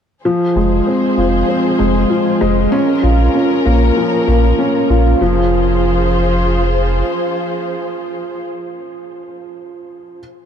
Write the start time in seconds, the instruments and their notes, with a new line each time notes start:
0.24 string section F3 F4 G#4 C5, upright piano F3
0.56 sub bass F1, upright piano G#3
0.87 upright piano C4
1.18 sub bass F1, upright piano F4
1.49 upright piano C4
1.79 sub bass F1, upright piano G#3
2.10 upright piano F3
2.41 sub bass F1, upright piano G#3
2.72 upright piano C#4, string section C#4 A#4
3.03 sub bass A#1, upright piano F4
3.34 upright piano C#4
3.66 sub bass A#1, upright piano A#3
3.96 upright piano F3
4.28 sub bass A#1, upright piano A#3
4.59 upright piano C#4
4.90 sub bass A#1, upright piano F4
5.21 sub bass F1, string section F3 F4 G#4 C5, upright piano F3